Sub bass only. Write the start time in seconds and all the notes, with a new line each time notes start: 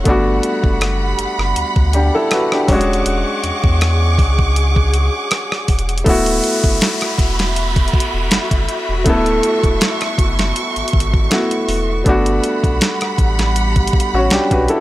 0.06 G1
0.64 F#1
1.18 F#1
1.39 F#1
1.56 D2
1.76 D2
2.68 E1
3.06 E1
3.44 E2
3.64 E2
4.19 C#2
5.69 E1
6.06 D1
6.64 F#1
7.19 E1
7.94 E1
8.14 E1
8.31 F#1
8.51 F#1
8.89 E1
9.06 D1
9.64 E1
10.18 F#1
10.76 G#1
10.93 G#1
11.68 E1
12.06 G1
12.64 B1
13.18 A1
13.93 A1
14.14 A1
14.31 B1
14.51 B1